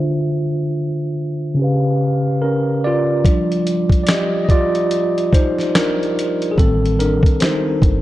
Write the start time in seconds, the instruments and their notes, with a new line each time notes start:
Already playing: tine electric piano D3 D4 F4 C5 E5
1.54 tine electric piano C#3 C#4
1.59 tine electric piano G4 B4
1.64 tine electric piano F5
2.42 tine electric piano C#4 A#4
2.84 tine electric piano F4 D5
3.25 tine electric piano F3 G3 D4, kick, closed hi-hat
3.52 closed hi-hat
3.67 closed hi-hat
3.90 kick, closed hi-hat
4.04 tine electric piano D5, closed hi-hat
4.09 tine electric piano G4 D#5, snare
4.45 tine electric piano D#5
4.49 tine electric piano F4 D5, kick, closed hi-hat
4.75 closed hi-hat
4.91 closed hi-hat
5.18 closed hi-hat
5.33 tine electric piano D#4 C5, kick, closed hi-hat
5.58 snare, closed hi-hat
5.75 tine electric piano D4 A#4, snare, closed hi-hat
6.03 closed hi-hat
6.19 closed hi-hat
6.42 closed hi-hat
6.51 tine electric piano G#4
6.58 fingered electric bass A1, tine electric piano D#3 G3 C4 A4, kick, closed hi-hat
6.86 closed hi-hat
6.99 tine electric piano D4 A#4, closed hi-hat
7.23 kick, closed hi-hat
7.40 tine electric piano D#4 C5, snare, closed hi-hat
7.82 fingered electric bass G1, kick, closed hi-hat